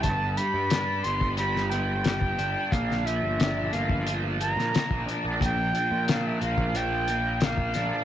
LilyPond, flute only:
\new Staff \with { instrumentName = "Flute" } { \time 4/4 \key bes \lydian \tempo 4 = 90 a''8 b''4 c'''8 b''8 g''4. | f''8 e''4 f''8 r8 bes''4 r8 | g''4 f''16 e''16 f''8 g''4 f''4 | }